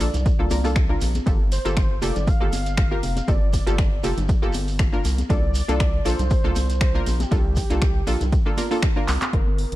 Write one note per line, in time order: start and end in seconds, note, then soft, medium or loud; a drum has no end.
0.00 0.10 A#1 medium
0.00 0.13 A#3 medium
0.00 0.14 D4 medium
0.00 0.14 F4 medium
0.00 0.14 A4 loud
0.00 0.97 D5 loud
0.00 open hi-hat loud
0.00 ride medium
0.00 shekere loud
0.14 0.31 C2 medium
0.14 closed hi-hat medium
0.14 low conga medium
0.14 shekere medium
0.26 kick loud
0.26 closed hi-hat medium
0.26 ride medium
0.26 shekere soft
0.39 0.47 C2 loud
0.39 0.48 A#3 loud
0.39 0.49 D4 medium
0.39 0.49 F4 medium
0.39 0.49 A4 loud
0.50 0.96 C2 medium
0.50 0.62 A#3 medium
0.50 0.62 D4 medium
0.50 0.63 F4 medium
0.50 0.63 A#4 medium
0.50 open hi-hat loud
0.50 ride medium
0.50 high conga medium
0.50 shekere loud
0.64 0.83 A#3 medium
0.64 0.83 D4 medium
0.64 0.84 F4 medium
0.64 0.84 A4 loud
0.64 open hi-hat medium
0.64 shekere medium
0.76 finger snap loud
0.76 kick loud
0.76 closed hi-hat medium
0.76 ride medium
0.76 shekere soft
0.89 1.24 A#3 medium
0.89 1.24 D4 medium
0.89 1.24 F4 medium
0.89 1.24 A#4 medium
0.89 high bongo soft
1.01 1.20 A#1 loud
1.01 open hi-hat loud
1.01 ride medium
1.01 high conga medium
1.01 shekere loud
1.15 closed hi-hat medium
1.15 high conga loud
1.15 shekere medium
1.26 1.59 G1 loud
1.26 1.39 A#3 medium
1.26 1.40 F4 medium
1.26 1.40 G4 medium
1.26 1.40 A4 medium
1.26 kick loud
1.26 closed hi-hat medium
1.26 ride medium
1.26 shekere soft
1.52 1.99 C5 loud
1.52 open hi-hat loud
1.52 ride medium
1.52 shekere loud
1.65 1.97 G1 loud
1.65 1.99 A#3 loud
1.65 1.99 F4 medium
1.65 2.00 G4 medium
1.65 2.00 A4 loud
1.65 closed hi-hat medium
1.65 shekere medium
1.77 finger snap loud
1.77 kick loud
1.77 closed hi-hat medium
1.77 ride medium
1.77 shekere soft
2.02 2.12 F1 medium
2.02 2.15 A#3 medium
2.02 2.15 F4 medium
2.02 2.15 G4 medium
2.02 2.16 A4 loud
2.02 2.29 D5 loud
2.02 open hi-hat loud
2.02 ride medium
2.02 shekere medium
2.16 2.33 G1 loud
2.16 closed hi-hat medium
2.16 low conga medium
2.16 shekere medium
2.27 3.30 F5 loud
2.27 kick loud
2.27 open hi-hat medium
2.27 ride medium
2.27 shekere soft
2.41 2.49 G1 loud
2.41 2.52 A#3 loud
2.41 2.52 F4 medium
2.41 2.52 G4 medium
2.41 2.52 A4 loud
2.41 high bongo medium
2.53 2.97 G1 medium
2.53 open hi-hat loud
2.53 ride medium
2.53 high conga medium
2.53 shekere medium
2.66 closed hi-hat medium
2.66 shekere medium
2.77 finger snap loud
2.77 kick loud
2.77 closed hi-hat medium
2.77 ride medium
2.77 shekere soft
2.91 3.25 A#3 medium
2.91 3.25 F4 medium
2.91 3.26 G4 medium
2.91 3.26 A#4 medium
3.03 3.21 F1 loud
3.03 open hi-hat loud
3.03 ride medium
3.03 high conga medium
3.03 shekere medium
3.16 closed hi-hat medium
3.16 high bongo medium
3.16 high conga loud
3.16 shekere medium
3.28 3.60 G1 loud
3.28 3.41 A#3 medium
3.28 3.41 F4 medium
3.28 3.41 G4 medium
3.28 3.42 A4 medium
3.28 4.04 D5 loud
3.28 kick loud
3.28 closed hi-hat soft
3.28 ride medium
3.28 shekere soft
3.53 kick medium
3.53 open hi-hat loud
3.53 ride medium
3.53 shekere medium
3.67 3.98 G1 loud
3.67 4.01 A#3 loud
3.67 4.01 F4 medium
3.67 4.01 G4 medium
3.67 4.01 A4 loud
3.67 closed hi-hat medium
3.67 high bongo soft
3.67 shekere medium
3.78 finger snap loud
3.78 kick loud
3.78 closed hi-hat medium
3.78 ride medium
3.78 shekere soft
4.03 4.13 F1 medium
4.03 4.17 A#3 medium
4.03 4.17 F4 medium
4.03 4.17 G4 medium
4.03 4.17 A4 medium
4.03 open hi-hat loud
4.03 ride medium
4.03 shekere medium
4.17 4.34 G1 loud
4.17 closed hi-hat medium
4.17 low conga medium
4.17 shekere soft
4.29 kick loud
4.29 closed hi-hat medium
4.29 ride medium
4.29 shekere soft
4.42 4.51 G1 loud
4.42 4.54 A#3 loud
4.42 4.54 F4 medium
4.42 4.54 G4 medium
4.42 4.54 A4 loud
4.53 4.99 G1 medium
4.53 open hi-hat loud
4.53 ride medium
4.53 high conga medium
4.53 shekere medium
4.68 open hi-hat medium
4.68 shekere medium
4.79 finger snap loud
4.79 kick loud
4.79 closed hi-hat medium
4.79 ride medium
4.79 shekere soft
4.93 5.27 A#3 medium
4.93 5.27 D4 medium
4.93 5.27 F4 medium
4.93 5.27 A#4 medium
4.93 high bongo medium
5.05 5.23 C2 loud
5.05 open hi-hat loud
5.05 ride medium
5.05 high conga medium
5.05 shekere loud
5.18 closed hi-hat medium
5.18 high conga medium
5.18 shekere medium
5.29 5.62 C2 loud
5.29 5.43 A#3 medium
5.29 5.43 D4 medium
5.29 5.43 F4 medium
5.29 5.43 A4 medium
5.29 6.07 D5 loud
5.29 kick loud
5.29 closed hi-hat medium
5.29 ride medium
5.29 shekere soft
5.55 open hi-hat loud
5.55 ride medium
5.55 shekere medium
5.68 6.00 C2 loud
5.68 6.03 A#3 medium
5.68 6.03 D4 medium
5.68 6.03 F4 medium
5.68 6.03 A4 loud
5.68 closed hi-hat medium
5.68 shekere soft
5.80 finger snap loud
5.80 kick loud
5.80 closed hi-hat medium
5.80 ride medium
5.80 shekere soft
6.05 6.15 A#1 medium
6.05 6.18 A#3 medium
6.05 6.19 D4 medium
6.05 6.19 F4 medium
6.05 6.19 A4 loud
6.05 6.81 C5 loud
6.05 open hi-hat loud
6.05 ride medium
6.05 shekere medium
6.19 6.36 C2 loud
6.19 closed hi-hat medium
6.19 low conga medium
6.19 shekere medium
6.30 kick loud
6.30 open hi-hat medium
6.30 ride medium
6.30 shekere soft
6.44 6.53 C2 loud
6.44 6.55 A#3 loud
6.44 6.55 D4 medium
6.44 6.56 F4 medium
6.44 6.56 A4 loud
6.44 high bongo medium
6.56 7.01 C2 medium
6.56 open hi-hat loud
6.56 ride medium
6.56 high conga medium
6.56 shekere medium
6.70 closed hi-hat medium
6.70 shekere medium
6.81 7.22 C5 loud
6.81 finger snap loud
6.81 kick loud
6.81 closed hi-hat medium
6.81 ride medium
6.81 shekere soft
6.94 7.29 A#3 medium
6.94 7.29 D4 medium
6.94 7.29 F4 medium
6.94 7.29 A#4 medium
7.06 7.25 A#1 loud
7.06 open hi-hat loud
7.06 ride medium
7.06 high conga medium
7.06 shekere medium
7.20 8.83 G4 loud
7.20 closed hi-hat medium
7.20 high bongo medium
7.20 high conga medium
7.20 shekere medium
7.31 7.64 C2 loud
7.31 7.45 A#3 medium
7.31 7.45 D4 medium
7.31 7.45 F4 medium
7.31 7.45 A4 medium
7.31 kick loud
7.31 closed hi-hat medium
7.31 ride medium
7.31 shekere soft
7.56 kick medium
7.56 open hi-hat loud
7.56 ride medium
7.56 shekere loud
7.70 8.02 C2 loud
7.70 8.04 A#3 medium
7.70 8.04 D4 medium
7.70 8.05 F4 medium
7.70 8.05 A4 loud
7.70 closed hi-hat medium
7.70 high bongo soft
7.70 shekere medium
7.82 finger snap loud
7.82 kick loud
7.82 closed hi-hat medium
7.82 ride medium
7.82 shekere soft
8.07 8.17 A#1 medium
8.07 8.20 A#3 medium
8.07 8.20 D4 medium
8.07 8.20 F4 medium
8.07 8.21 A4 loud
8.07 open hi-hat loud
8.07 ride medium
8.07 shekere medium
8.21 8.38 C2 medium
8.21 closed hi-hat medium
8.21 low conga medium
8.21 shekere medium
8.32 kick loud
8.32 closed hi-hat medium
8.32 ride medium
8.32 shekere soft
8.46 8.55 A#3 loud
8.46 8.55 D4 medium
8.46 8.55 F4 medium
8.46 8.56 A4 loud
8.57 8.69 A#3 medium
8.57 8.69 D4 medium
8.57 8.69 F4 medium
8.57 8.70 A#4 medium
8.57 open hi-hat loud
8.57 ride medium
8.57 high conga medium
8.57 shekere medium
8.71 8.90 A#3 medium
8.71 8.90 D4 medium
8.71 8.90 F4 medium
8.71 8.90 A4 loud
8.71 open hi-hat medium
8.71 shekere medium
8.83 finger snap loud
8.83 kick loud
8.83 closed hi-hat medium
8.83 ride medium
8.83 shekere soft
8.96 9.30 A#3 medium
8.96 9.31 D4 medium
8.96 9.31 F4 medium
8.96 9.31 A#4 medium
8.96 high bongo medium
9.08 9.18 C2 medium
9.08 clap medium
9.08 open hi-hat loud
9.08 ride medium
9.08 high conga medium
9.08 shekere loud
9.22 clap medium
9.22 closed hi-hat medium
9.22 high conga medium
9.22 shekere soft
9.33 9.66 G1 loud
9.33 9.76 A#4 loud
9.33 kick loud
9.33 closed hi-hat medium
9.47 high conga medium
9.58 open hi-hat loud
9.72 9.76 G1 loud
9.72 closed hi-hat medium